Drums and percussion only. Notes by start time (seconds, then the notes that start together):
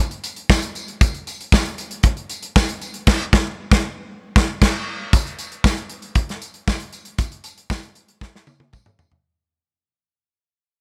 0.11 closed hi-hat
0.24 closed hi-hat, tambourine
0.36 closed hi-hat
0.50 kick, snare, tambourine
0.62 closed hi-hat
0.75 closed hi-hat, tambourine
0.88 closed hi-hat
1.01 kick, closed hi-hat, tambourine
1.14 closed hi-hat
1.27 closed hi-hat, tambourine
1.41 closed hi-hat
1.52 kick, snare, tambourine
1.65 closed hi-hat
1.78 closed hi-hat, tambourine
1.91 closed hi-hat
2.03 kick, closed hi-hat
2.17 closed hi-hat
2.30 closed hi-hat, tambourine
2.42 closed hi-hat
2.56 kick, snare, tambourine
2.69 closed hi-hat
2.81 closed hi-hat, tambourine
2.94 closed hi-hat
3.07 kick, snare, crash
3.33 kick, snare
3.71 kick, snare
4.36 kick, snare
4.61 kick, snare, crash
5.13 kick, closed hi-hat, tambourine
5.27 closed hi-hat
5.39 closed hi-hat, tambourine
5.52 closed hi-hat
5.64 kick, snare, tambourine
5.77 closed hi-hat
5.89 closed hi-hat
6.02 closed hi-hat
6.15 kick, closed hi-hat
6.29 snare, closed hi-hat
6.42 closed hi-hat, tambourine
6.54 closed hi-hat
6.68 kick, snare, tambourine
6.80 closed hi-hat
6.93 closed hi-hat, tambourine
7.05 closed hi-hat
7.18 kick, closed hi-hat, tambourine
7.32 closed hi-hat
7.44 closed hi-hat, tambourine
7.58 closed hi-hat
7.70 kick, snare, tambourine
7.83 closed hi-hat
7.95 closed hi-hat
8.08 closed hi-hat
8.21 kick, snare, tambourine
8.36 snare
8.47 high tom, tambourine
8.60 high tom
8.73 kick, mid tom, tambourine
8.86 mid tom
8.99 floor tom, tambourine
9.12 floor tom